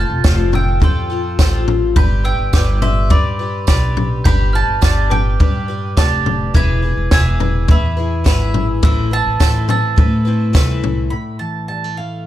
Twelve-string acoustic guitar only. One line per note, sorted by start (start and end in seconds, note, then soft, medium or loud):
0.00 0.24 C4 soft
0.00 0.25 F4 soft
0.00 0.24 A4 soft
0.24 0.53 F3 medium
0.24 0.53 G3 medium
0.24 0.53 C4 medium
0.24 0.52 F4 medium
0.24 0.51 A4 medium
0.52 0.80 C4 soft
0.52 0.81 F4 soft
0.52 0.81 A4 soft
0.80 1.09 G3 soft
0.80 1.10 C4 medium
0.80 1.10 F4 medium
0.80 1.08 A4 medium
1.10 1.39 C4 soft
1.10 1.39 F4 soft
1.10 1.38 A4 medium
1.39 1.96 F3 medium
1.39 1.96 G3 medium
1.39 1.96 C4 medium
1.39 1.97 F4 medium
1.39 1.97 A4 medium
1.96 2.24 G3 medium
1.96 2.25 D4 medium
1.96 2.24 G4 medium
1.96 2.23 B4 medium
2.24 2.54 D4 soft
2.24 2.54 G4 soft
2.24 2.53 B4 soft
2.54 2.82 G3 medium
2.54 2.82 D4 medium
2.54 2.83 G4 medium
2.54 2.81 B4 medium
2.82 3.10 D4 soft
2.82 3.11 G4 soft
2.82 3.10 B4 soft
3.10 3.39 G3 medium
3.10 3.39 D4 soft
3.10 3.40 G4 medium
3.10 3.38 B4 medium
3.39 3.67 D4 soft
3.39 3.68 G4 soft
3.39 3.68 B4 medium
3.68 4.24 G3 medium
3.68 4.25 D4 medium
3.68 4.25 G4 medium
3.68 4.27 B4 medium
4.25 4.53 G3 medium
4.25 4.54 D4 medium
4.25 4.53 G4 medium
4.25 4.51 B4 medium
4.53 4.81 D4 soft
4.53 4.82 G4 soft
4.53 4.81 B4 medium
4.81 5.10 G3 medium
4.81 5.11 D4 medium
4.81 5.11 G4 medium
4.81 5.09 B4 medium
5.10 5.39 D4 soft
5.10 5.40 G4 soft
5.10 5.39 B4 soft
5.40 5.68 G3 medium
5.40 5.68 D4 medium
5.40 5.68 G4 medium
5.40 5.67 B4 medium
5.68 5.97 D4 soft
5.68 5.97 G4 medium
5.68 5.97 B4 medium
5.97 6.54 G3 medium
5.97 6.54 D4 medium
5.97 6.55 G4 medium
5.97 6.56 B4 medium
6.54 6.82 E3 medium
6.54 6.83 B3 medium
6.54 6.83 E4 medium
6.54 6.83 G#4 medium
6.54 6.81 B4 medium
6.82 7.11 E4 soft
6.82 7.12 G#4 soft
6.82 7.11 B4 soft
7.11 7.40 E3 medium
7.11 7.40 B3 medium
7.11 7.40 E4 medium
7.11 7.40 G#4 medium
7.11 7.38 B4 medium
7.40 7.68 E4 soft
7.40 7.69 G#4 soft
7.40 7.68 B4 soft
7.68 7.97 B3 medium
7.68 7.97 E4 medium
7.68 7.97 G#4 medium
7.68 7.96 B4 medium
7.97 8.24 E4 soft
7.97 8.25 G#4 soft
7.97 8.25 B4 medium
8.24 8.83 E3 medium
8.24 8.82 B3 medium
8.24 8.84 E4 medium
8.24 8.83 G#4 medium
8.24 8.83 B4 medium
8.82 9.11 A2 medium
8.82 9.11 E3 medium
8.82 9.12 A3 medium
8.82 9.12 C4 medium
8.82 9.11 E4 medium
8.82 9.10 B4 medium
9.11 9.39 A3 soft
9.11 9.40 C4 soft
9.11 9.40 E4 soft
9.11 9.40 B4 soft
9.40 9.68 A2 medium
9.40 9.69 E3 medium
9.40 9.69 A3 medium
9.40 9.69 C4 medium
9.40 9.68 E4 medium
9.40 9.67 B4 medium
9.68 9.95 A3 soft
9.68 9.96 C4 soft
9.68 9.97 E4 soft
9.68 9.97 B4 soft
9.96 10.25 A3 medium
9.96 10.26 C4 medium
9.96 10.25 E4 medium
9.96 10.24 B4 medium
10.25 10.53 A3 soft
10.25 10.54 C4 soft
10.25 10.54 E4 soft
10.25 10.54 B4 medium
10.53 11.11 A2 medium
10.53 11.11 E3 medium
10.53 11.12 A3 medium
10.53 11.12 C4 medium
10.53 11.12 E4 medium
10.53 11.13 B4 medium